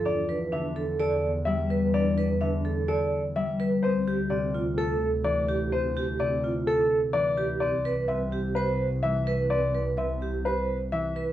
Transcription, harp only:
\new Staff \with { instrumentName = "Harp" } { \clef bass \time 4/4 \key c \major \tempo 4 = 127 r4 d2 g4~ | g4 d2 g4~ | g4 c2 e4~ | e4 c2 e4 |
r4 c2 e4~ | e4 c2 e4 | }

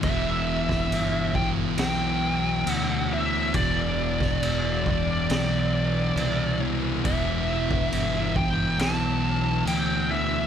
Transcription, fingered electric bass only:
\new Staff \with { instrumentName = "Fingered electric bass" } { \clef bass \time 4/4 \key e \minor \tempo 4 = 69 e,,4 g,,4 b,,4 d,4 | e,,4 e,,4 b,,4 c,4 | e,,4 g,,4 b,,4 d,4 | }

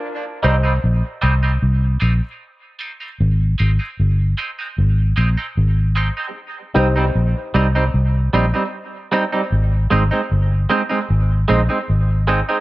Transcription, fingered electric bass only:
\new Staff \with { instrumentName = "Fingered electric bass" } { \clef bass \time 4/4 \key c \minor \tempo 4 = 76 r8 c,8 bes,,16 r16 c,8 c,8 bes,,16 r4 r16 | aes,,8 aes,,16 r16 g,,8 r8 aes,,8 bes,,16 r16 aes,,8. r16 | r8 c,8 bes,,16 r16 c,8 c,8 bes,,16 r4 r16 | aes,,8 aes,,16 r16 g,,8 r8 aes,,8 bes,,16 r16 aes,,8. r16 | }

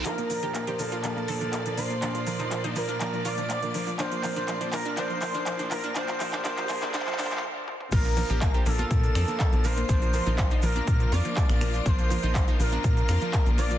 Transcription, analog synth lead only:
\new Staff \with { instrumentName = "Analog synth lead" } { \time 4/4 \key bes \major \tempo 4 = 122 bes'4. a'2 c''8~ | c''4. bes'4 d''4. | c''4. bes'8 c''4. bes'8 | c''4 c''4 c''8 c''8 r4 |
bes'4. a'2 c''8~ | c''4. bes'4 d''4. | c''4. bes'2 d''8 | }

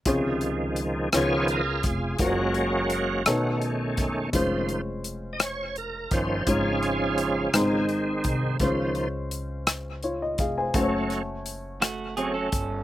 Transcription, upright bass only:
\new Staff \with { instrumentName = "Upright bass" } { \clef bass \time 6/8 \key des \major \tempo 4. = 56 des,4. des,4 f,,8 | ges,,4. ces,4 fes,,8 | f,,2~ f,,8 g,,8 | aes,,4. aes,,4 c,8 |
des,2~ des,8 f,,8 | ges,,2~ ges,,8 g,,8 | }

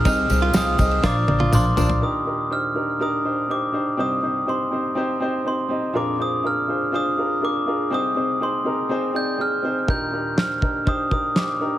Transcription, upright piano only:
<<
  \new Staff \with { instrumentName = "Upright piano" } { \time 4/4 \key ees \major \tempo 4 = 122 <c' ees' aes' c'' ees''>8 <c' ees' aes' c'' ees''>8 <c' ees' aes' c'' f''>8 <c' ees' aes' c'' ees''>8 <d' f' bes' c'' d''>8 <d' f' bes' c'' d''>8 <d' f' bes' c'' f''>8 <d' f' bes' c'' d''>8 | <d' ees' g' bes'>8 <d' ees' g' bes'>8 <d' ees' g' c''>8 <d' ees' g' bes'>8 <d' ees' g' bes'>8 <d' ees' g' c''>8 <d' ees' g' c''>8 <d' ees' g' c''>8 | <c' ees' g' c''>8 <c' ees' g' c''>8 <c' ees' g' c''>8 <c' ees' g' c''>8 <c' ees' g' c''>8 <c' ees' g' c''>8 <c' ees' g' c''>8 <c' ees' g' ees''>8 | <d' f' aes' bes'>8 <d' f' aes' c''>8 <d' f' aes' bes'>8 <d' f' aes' c''>8 <d' f' aes' c''>8 <d' f' aes' bes'>8 <d' f' aes' bes'>8 <d' f' aes' bes'>8 |
<c' ees' aes' c''>8 <c' ees' aes' c''>8 <c' ees' aes' c''>8 <c' ees' aes' bes'>8 <c' ees' aes' c''>8 <c' ees' aes' d''>8 <c' ees' aes' ees''>8 <c' ees' aes' c''>8 | <d' ees' g' bes'>8 <d' ees' g' bes'>8 <d' ees' g' c''>8 <d' ees' g' bes'>8 <d' ees' g' c''>8 <d' ees' g' bes'>8 <d' ees' g' c''>8 <d' ees' g' bes'>8 | }
  \new Staff \with { instrumentName = "Upright piano" } { \clef bass \time 4/4 \key ees \major c4. r2 r8 | <ees, bes,>1 | <c, g,>1 | <bes,, f,>1 |
<c, c>1 | <ees, bes,>1 | }
>>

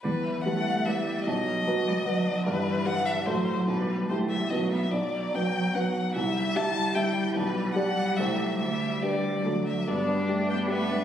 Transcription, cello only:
\new Staff \with { instrumentName = "Cello" } { \clef bass \time 3/4 \key e \minor \tempo 4 = 146 g8 e8 a4 g4 | fis4 fis8 g8 fis4 | e2 fis4 | g4 a8 g8 fis8 b8 |
\key g \major fis2. | g2.~ | g2. | g2 fis8 r8 |
g4 a8 b8 a8 g8 | }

